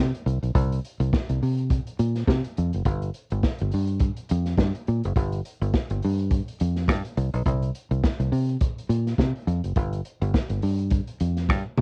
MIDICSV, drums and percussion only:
0, 0, Header, 1, 2, 480
1, 0, Start_track
1, 0, Key_signature, -2, "minor"
1, 0, Tempo, 575816
1, 456, Time_signature, 4, 2, 24, 8
1, 9847, End_track
2, 0, Start_track
2, 0, Title_t, "Drums"
2, 121, Note_on_c, 9, 42, 53
2, 205, Note_off_c, 9, 42, 0
2, 228, Note_on_c, 9, 42, 59
2, 311, Note_off_c, 9, 42, 0
2, 360, Note_on_c, 9, 42, 49
2, 443, Note_off_c, 9, 42, 0
2, 458, Note_on_c, 9, 36, 123
2, 460, Note_on_c, 9, 42, 86
2, 542, Note_off_c, 9, 36, 0
2, 543, Note_off_c, 9, 42, 0
2, 602, Note_on_c, 9, 42, 53
2, 685, Note_off_c, 9, 42, 0
2, 706, Note_on_c, 9, 42, 68
2, 789, Note_off_c, 9, 42, 0
2, 839, Note_on_c, 9, 42, 49
2, 923, Note_off_c, 9, 42, 0
2, 942, Note_on_c, 9, 36, 127
2, 947, Note_on_c, 9, 38, 114
2, 1026, Note_off_c, 9, 36, 0
2, 1030, Note_off_c, 9, 38, 0
2, 1078, Note_on_c, 9, 42, 53
2, 1161, Note_off_c, 9, 42, 0
2, 1188, Note_on_c, 9, 46, 70
2, 1272, Note_off_c, 9, 46, 0
2, 1321, Note_on_c, 9, 42, 50
2, 1405, Note_off_c, 9, 42, 0
2, 1418, Note_on_c, 9, 42, 89
2, 1420, Note_on_c, 9, 36, 123
2, 1502, Note_off_c, 9, 42, 0
2, 1503, Note_off_c, 9, 36, 0
2, 1557, Note_on_c, 9, 42, 53
2, 1640, Note_off_c, 9, 42, 0
2, 1660, Note_on_c, 9, 42, 82
2, 1743, Note_off_c, 9, 42, 0
2, 1796, Note_on_c, 9, 38, 39
2, 1797, Note_on_c, 9, 42, 45
2, 1879, Note_off_c, 9, 38, 0
2, 1880, Note_off_c, 9, 42, 0
2, 1896, Note_on_c, 9, 36, 126
2, 1909, Note_on_c, 9, 38, 118
2, 1980, Note_off_c, 9, 36, 0
2, 1992, Note_off_c, 9, 38, 0
2, 2038, Note_on_c, 9, 42, 49
2, 2121, Note_off_c, 9, 42, 0
2, 2144, Note_on_c, 9, 42, 65
2, 2227, Note_off_c, 9, 42, 0
2, 2274, Note_on_c, 9, 42, 49
2, 2358, Note_off_c, 9, 42, 0
2, 2377, Note_on_c, 9, 42, 79
2, 2378, Note_on_c, 9, 36, 111
2, 2460, Note_off_c, 9, 42, 0
2, 2461, Note_off_c, 9, 36, 0
2, 2515, Note_on_c, 9, 42, 50
2, 2598, Note_off_c, 9, 42, 0
2, 2616, Note_on_c, 9, 42, 60
2, 2699, Note_off_c, 9, 42, 0
2, 2753, Note_on_c, 9, 42, 46
2, 2836, Note_off_c, 9, 42, 0
2, 2861, Note_on_c, 9, 36, 116
2, 2862, Note_on_c, 9, 38, 117
2, 2944, Note_off_c, 9, 36, 0
2, 2946, Note_off_c, 9, 38, 0
2, 2988, Note_on_c, 9, 42, 49
2, 3072, Note_off_c, 9, 42, 0
2, 3097, Note_on_c, 9, 46, 72
2, 3180, Note_off_c, 9, 46, 0
2, 3228, Note_on_c, 9, 42, 52
2, 3311, Note_off_c, 9, 42, 0
2, 3331, Note_on_c, 9, 42, 82
2, 3338, Note_on_c, 9, 36, 127
2, 3414, Note_off_c, 9, 42, 0
2, 3421, Note_off_c, 9, 36, 0
2, 3473, Note_on_c, 9, 42, 50
2, 3556, Note_off_c, 9, 42, 0
2, 3578, Note_on_c, 9, 42, 89
2, 3661, Note_off_c, 9, 42, 0
2, 3716, Note_on_c, 9, 38, 35
2, 3717, Note_on_c, 9, 42, 41
2, 3799, Note_off_c, 9, 38, 0
2, 3800, Note_off_c, 9, 42, 0
2, 3815, Note_on_c, 9, 36, 107
2, 3823, Note_on_c, 9, 38, 127
2, 3898, Note_off_c, 9, 36, 0
2, 3906, Note_off_c, 9, 38, 0
2, 3959, Note_on_c, 9, 42, 49
2, 4042, Note_off_c, 9, 42, 0
2, 4062, Note_on_c, 9, 42, 62
2, 4145, Note_off_c, 9, 42, 0
2, 4198, Note_on_c, 9, 42, 50
2, 4281, Note_off_c, 9, 42, 0
2, 4300, Note_on_c, 9, 36, 118
2, 4302, Note_on_c, 9, 42, 85
2, 4383, Note_off_c, 9, 36, 0
2, 4385, Note_off_c, 9, 42, 0
2, 4437, Note_on_c, 9, 42, 46
2, 4520, Note_off_c, 9, 42, 0
2, 4544, Note_on_c, 9, 42, 65
2, 4627, Note_off_c, 9, 42, 0
2, 4684, Note_on_c, 9, 42, 43
2, 4768, Note_off_c, 9, 42, 0
2, 4783, Note_on_c, 9, 36, 117
2, 4784, Note_on_c, 9, 38, 118
2, 4866, Note_off_c, 9, 36, 0
2, 4868, Note_off_c, 9, 38, 0
2, 4917, Note_on_c, 9, 42, 49
2, 5000, Note_off_c, 9, 42, 0
2, 5022, Note_on_c, 9, 46, 81
2, 5105, Note_off_c, 9, 46, 0
2, 5159, Note_on_c, 9, 42, 49
2, 5243, Note_off_c, 9, 42, 0
2, 5257, Note_on_c, 9, 42, 82
2, 5260, Note_on_c, 9, 36, 127
2, 5340, Note_off_c, 9, 42, 0
2, 5343, Note_off_c, 9, 36, 0
2, 5402, Note_on_c, 9, 42, 53
2, 5486, Note_off_c, 9, 42, 0
2, 5500, Note_on_c, 9, 42, 88
2, 5583, Note_off_c, 9, 42, 0
2, 5636, Note_on_c, 9, 38, 41
2, 5637, Note_on_c, 9, 42, 43
2, 5719, Note_off_c, 9, 38, 0
2, 5721, Note_off_c, 9, 42, 0
2, 5735, Note_on_c, 9, 36, 127
2, 5745, Note_on_c, 9, 38, 115
2, 5818, Note_off_c, 9, 36, 0
2, 5828, Note_off_c, 9, 38, 0
2, 5875, Note_on_c, 9, 42, 54
2, 5959, Note_off_c, 9, 42, 0
2, 5979, Note_on_c, 9, 42, 61
2, 6062, Note_off_c, 9, 42, 0
2, 6116, Note_on_c, 9, 42, 49
2, 6199, Note_off_c, 9, 42, 0
2, 6217, Note_on_c, 9, 36, 110
2, 6218, Note_on_c, 9, 42, 81
2, 6300, Note_off_c, 9, 36, 0
2, 6301, Note_off_c, 9, 42, 0
2, 6355, Note_on_c, 9, 42, 46
2, 6438, Note_off_c, 9, 42, 0
2, 6459, Note_on_c, 9, 42, 68
2, 6543, Note_off_c, 9, 42, 0
2, 6594, Note_on_c, 9, 42, 45
2, 6677, Note_off_c, 9, 42, 0
2, 6699, Note_on_c, 9, 36, 114
2, 6699, Note_on_c, 9, 38, 112
2, 6782, Note_off_c, 9, 36, 0
2, 6783, Note_off_c, 9, 38, 0
2, 6835, Note_on_c, 9, 42, 51
2, 6918, Note_off_c, 9, 42, 0
2, 6942, Note_on_c, 9, 46, 69
2, 7025, Note_off_c, 9, 46, 0
2, 7078, Note_on_c, 9, 42, 50
2, 7161, Note_off_c, 9, 42, 0
2, 7175, Note_on_c, 9, 42, 88
2, 7179, Note_on_c, 9, 36, 122
2, 7258, Note_off_c, 9, 42, 0
2, 7262, Note_off_c, 9, 36, 0
2, 7322, Note_on_c, 9, 42, 47
2, 7406, Note_off_c, 9, 42, 0
2, 7418, Note_on_c, 9, 42, 85
2, 7502, Note_off_c, 9, 42, 0
2, 7560, Note_on_c, 9, 38, 39
2, 7562, Note_on_c, 9, 42, 40
2, 7644, Note_off_c, 9, 38, 0
2, 7645, Note_off_c, 9, 42, 0
2, 7655, Note_on_c, 9, 36, 114
2, 7665, Note_on_c, 9, 38, 118
2, 7738, Note_off_c, 9, 36, 0
2, 7748, Note_off_c, 9, 38, 0
2, 7799, Note_on_c, 9, 42, 48
2, 7882, Note_off_c, 9, 42, 0
2, 7900, Note_on_c, 9, 42, 70
2, 7984, Note_off_c, 9, 42, 0
2, 8036, Note_on_c, 9, 42, 52
2, 8120, Note_off_c, 9, 42, 0
2, 8136, Note_on_c, 9, 42, 83
2, 8137, Note_on_c, 9, 36, 114
2, 8219, Note_off_c, 9, 42, 0
2, 8220, Note_off_c, 9, 36, 0
2, 8276, Note_on_c, 9, 42, 49
2, 8359, Note_off_c, 9, 42, 0
2, 8378, Note_on_c, 9, 42, 68
2, 8462, Note_off_c, 9, 42, 0
2, 8518, Note_on_c, 9, 42, 44
2, 8602, Note_off_c, 9, 42, 0
2, 8620, Note_on_c, 9, 36, 123
2, 8622, Note_on_c, 9, 38, 111
2, 8704, Note_off_c, 9, 36, 0
2, 8706, Note_off_c, 9, 38, 0
2, 8749, Note_on_c, 9, 42, 48
2, 8833, Note_off_c, 9, 42, 0
2, 8855, Note_on_c, 9, 46, 78
2, 8939, Note_off_c, 9, 46, 0
2, 8993, Note_on_c, 9, 42, 53
2, 9076, Note_off_c, 9, 42, 0
2, 9091, Note_on_c, 9, 42, 86
2, 9098, Note_on_c, 9, 36, 117
2, 9174, Note_off_c, 9, 42, 0
2, 9182, Note_off_c, 9, 36, 0
2, 9232, Note_on_c, 9, 42, 50
2, 9315, Note_off_c, 9, 42, 0
2, 9337, Note_on_c, 9, 42, 88
2, 9420, Note_off_c, 9, 42, 0
2, 9475, Note_on_c, 9, 38, 36
2, 9476, Note_on_c, 9, 42, 42
2, 9558, Note_off_c, 9, 38, 0
2, 9560, Note_off_c, 9, 42, 0
2, 9577, Note_on_c, 9, 36, 113
2, 9586, Note_on_c, 9, 38, 59
2, 9660, Note_off_c, 9, 36, 0
2, 9669, Note_off_c, 9, 38, 0
2, 9815, Note_on_c, 9, 45, 105
2, 9847, Note_off_c, 9, 45, 0
2, 9847, End_track
0, 0, End_of_file